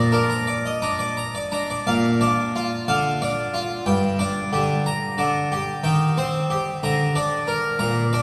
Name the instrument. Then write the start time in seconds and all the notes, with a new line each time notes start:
harpsichord
Already playing: A#2 D5
0.12 D4 A#4
0.30 A#5
0.47 D5
0.66 D#5
0.82 D4 A#5
0.99 D5
1.17 A#5
1.35 D5
1.52 D4 A#5
1.70 D5
1.87 A#2 F5
2.21 D4 D5
2.56 F4
2.88 D3 F5
3.22 D4 D5
3.54 F4
3.86 G2 G5
4.19 D4 D5
4.53 D3 G4
4.86 A#5
5.18 D3 D5
5.52 G4
5.84 D#3 G5
6.17 C4 C5
6.50 G4
6.83 D3 A#5
7.15 D4 D5
7.48 A#4
7.79 A#2 A#5
8.13 D4 D5